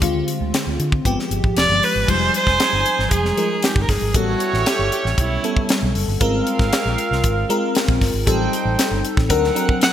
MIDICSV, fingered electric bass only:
0, 0, Header, 1, 2, 480
1, 0, Start_track
1, 0, Tempo, 515464
1, 20, Time_signature, 4, 2, 24, 8
1, 9246, End_track
2, 0, Start_track
2, 0, Title_t, "Fingered electric bass"
2, 0, Program_c, 0, 33
2, 15, Note_on_c, 0, 38, 96
2, 193, Note_off_c, 0, 38, 0
2, 379, Note_on_c, 0, 38, 97
2, 467, Note_off_c, 0, 38, 0
2, 622, Note_on_c, 0, 38, 86
2, 709, Note_off_c, 0, 38, 0
2, 740, Note_on_c, 0, 50, 79
2, 916, Note_off_c, 0, 50, 0
2, 979, Note_on_c, 0, 31, 87
2, 1068, Note_off_c, 0, 31, 0
2, 1215, Note_on_c, 0, 31, 79
2, 1305, Note_off_c, 0, 31, 0
2, 1340, Note_on_c, 0, 32, 80
2, 1428, Note_off_c, 0, 32, 0
2, 1458, Note_on_c, 0, 29, 91
2, 1547, Note_off_c, 0, 29, 0
2, 1577, Note_on_c, 0, 31, 95
2, 1666, Note_off_c, 0, 31, 0
2, 1819, Note_on_c, 0, 32, 90
2, 1907, Note_off_c, 0, 32, 0
2, 1941, Note_on_c, 0, 29, 97
2, 2116, Note_off_c, 0, 29, 0
2, 2298, Note_on_c, 0, 29, 100
2, 2387, Note_off_c, 0, 29, 0
2, 2540, Note_on_c, 0, 31, 72
2, 2628, Note_off_c, 0, 31, 0
2, 2781, Note_on_c, 0, 32, 75
2, 2869, Note_off_c, 0, 32, 0
2, 2899, Note_on_c, 0, 29, 88
2, 3075, Note_off_c, 0, 29, 0
2, 3501, Note_on_c, 0, 31, 91
2, 3589, Note_off_c, 0, 31, 0
2, 3621, Note_on_c, 0, 31, 82
2, 3709, Note_off_c, 0, 31, 0
2, 3741, Note_on_c, 0, 32, 77
2, 3829, Note_off_c, 0, 32, 0
2, 3861, Note_on_c, 0, 33, 107
2, 4036, Note_off_c, 0, 33, 0
2, 4222, Note_on_c, 0, 33, 92
2, 4310, Note_off_c, 0, 33, 0
2, 4460, Note_on_c, 0, 31, 74
2, 4548, Note_off_c, 0, 31, 0
2, 4703, Note_on_c, 0, 33, 89
2, 4790, Note_off_c, 0, 33, 0
2, 4822, Note_on_c, 0, 35, 82
2, 4997, Note_off_c, 0, 35, 0
2, 5425, Note_on_c, 0, 35, 103
2, 5511, Note_off_c, 0, 35, 0
2, 5544, Note_on_c, 0, 30, 83
2, 5631, Note_off_c, 0, 30, 0
2, 5661, Note_on_c, 0, 31, 95
2, 5749, Note_off_c, 0, 31, 0
2, 5781, Note_on_c, 0, 32, 101
2, 5957, Note_off_c, 0, 32, 0
2, 6140, Note_on_c, 0, 32, 95
2, 6228, Note_off_c, 0, 32, 0
2, 6383, Note_on_c, 0, 34, 83
2, 6470, Note_off_c, 0, 34, 0
2, 6621, Note_on_c, 0, 36, 75
2, 6709, Note_off_c, 0, 36, 0
2, 6741, Note_on_c, 0, 32, 93
2, 6917, Note_off_c, 0, 32, 0
2, 7342, Note_on_c, 0, 34, 95
2, 7429, Note_off_c, 0, 34, 0
2, 7463, Note_on_c, 0, 31, 85
2, 7550, Note_off_c, 0, 31, 0
2, 7578, Note_on_c, 0, 32, 73
2, 7667, Note_off_c, 0, 32, 0
2, 7702, Note_on_c, 0, 33, 101
2, 7878, Note_off_c, 0, 33, 0
2, 8057, Note_on_c, 0, 33, 84
2, 8147, Note_off_c, 0, 33, 0
2, 8298, Note_on_c, 0, 31, 83
2, 8387, Note_off_c, 0, 31, 0
2, 8540, Note_on_c, 0, 33, 86
2, 8629, Note_off_c, 0, 33, 0
2, 8660, Note_on_c, 0, 38, 101
2, 8836, Note_off_c, 0, 38, 0
2, 9246, End_track
0, 0, End_of_file